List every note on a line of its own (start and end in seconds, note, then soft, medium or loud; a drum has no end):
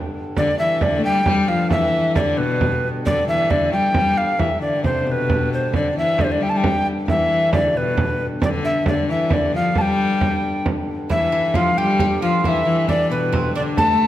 0.00 0.36 G2 medium
0.00 0.36 D3 medium
0.14 frame drum soft
0.37 5.73 G2 medium
0.37 0.58 D3 medium
0.37 5.73 D3 medium
0.37 0.58 D5 medium
0.37 frame drum medium
0.59 0.83 E3 medium
0.59 0.84 E5 medium
0.59 frame drum soft
0.81 1.00 D3 medium
0.81 1.04 D5 medium
0.81 frame drum medium
0.99 1.06 A3 medium
1.04 1.26 G3 medium
1.04 1.50 G5 loud
1.04 frame drum soft
1.26 1.50 G3 medium
1.26 frame drum medium
1.48 1.71 F3 medium
1.48 1.70 F5 medium
1.48 frame drum soft
1.70 2.17 E3 medium
1.70 2.13 E5 medium
1.70 frame drum medium
1.93 frame drum soft
2.15 2.39 D3 medium
2.15 2.39 D5 medium
2.15 frame drum medium
2.37 2.88 B2 medium
2.37 2.88 B4 medium
2.37 frame drum soft
2.61 frame drum medium
2.83 frame drum soft
3.06 3.27 D3 medium
3.06 3.27 D5 medium
3.06 frame drum medium
3.28 3.53 E3 medium
3.28 3.52 E5 medium
3.28 frame drum soft
3.50 3.75 D3 medium
3.50 3.72 D5 medium
3.50 frame drum medium
3.73 3.95 G3 medium
3.73 4.19 G5 medium
3.73 frame drum soft
3.94 4.37 G3 medium
3.94 frame drum medium
4.17 4.41 F5 medium
4.17 frame drum soft
4.39 4.49 E3 medium
4.39 4.61 E5 medium
4.39 frame drum medium
4.61 4.85 D3 medium
4.61 4.83 D5 medium
4.83 5.08 C3 medium
4.83 5.07 C5 medium
4.83 frame drum medium
5.06 5.73 B2 medium
5.06 5.12 C5 medium
5.11 5.52 B4 medium
5.30 frame drum medium
5.52 5.73 C5 medium
5.52 frame drum soft
5.73 11.08 G2 medium
5.73 5.95 D3 medium
5.73 11.08 D3 medium
5.73 5.96 D5 medium
5.73 frame drum medium
5.96 6.20 E3 medium
5.96 6.23 E5 medium
5.96 frame drum soft
6.18 6.42 D3 medium
6.18 6.26 D5 medium
6.18 frame drum medium
6.24 6.33 C5 medium
6.32 6.44 D5 medium
6.40 6.54 G3 medium
6.40 6.51 G5 medium
6.40 frame drum soft
6.49 6.58 A5 medium
6.55 6.84 G3 medium
6.55 6.87 G5 medium
6.64 frame drum medium
6.86 frame drum soft
7.08 7.55 E3 medium
7.08 7.51 E5 medium
7.08 frame drum medium
7.30 frame drum soft
7.53 7.75 D3 medium
7.53 7.79 D5 medium
7.53 frame drum medium
7.75 8.22 B2 medium
7.75 8.26 B4 medium
7.75 frame drum soft
7.97 frame drum medium
8.20 frame drum soft
8.42 8.84 D3 medium
8.42 8.49 D5 medium
8.42 frame drum medium
8.64 8.86 E5 medium
8.64 frame drum soft
8.86 9.11 D3 medium
8.86 9.08 D5 medium
8.86 frame drum medium
9.08 9.32 E3 medium
9.08 9.35 E5 medium
9.08 frame drum soft
9.30 9.54 D3 medium
9.30 9.55 D5 medium
9.30 frame drum medium
9.53 9.75 F3 medium
9.53 9.80 F5 loud
9.53 frame drum soft
9.75 10.61 G3 medium
9.75 9.82 A5 medium
9.75 frame drum medium
9.81 10.67 G5 medium
9.99 frame drum soft
10.21 frame drum medium
10.66 frame drum medium
10.88 frame drum soft
11.10 14.07 G2 medium
11.10 14.07 D3 medium
11.10 11.57 E3 medium
11.10 11.31 E4 medium
11.10 11.57 E5 medium
11.10 frame drum medium
11.32 11.55 E4 medium
11.54 11.77 F3 medium
11.54 11.78 F4 medium
11.54 11.79 F5 medium
11.54 frame drum medium
11.78 12.19 G3 medium
11.78 11.99 G4 medium
11.78 12.22 G5 medium
11.99 12.21 G4 medium
11.99 frame drum medium
12.21 12.42 F3 medium
12.21 12.45 F4 medium
12.21 12.44 F5 medium
12.44 12.65 E3 medium
12.44 12.88 E4 medium
12.44 12.49 F5 medium
12.44 frame drum medium
12.48 12.88 E5 medium
12.66 13.12 E3 medium
12.88 13.12 D4 medium
12.88 13.10 D5 medium
12.88 frame drum medium
13.10 13.55 B2 medium
13.10 13.32 B3 medium
13.10 13.52 B4 medium
13.32 13.55 C4 medium
13.32 frame drum medium
13.55 13.79 D3 medium
13.55 13.78 D4 medium
13.55 13.62 D5 medium
13.77 14.07 A3 medium
13.77 14.07 A4 medium
13.77 14.07 A5 medium
13.77 frame drum medium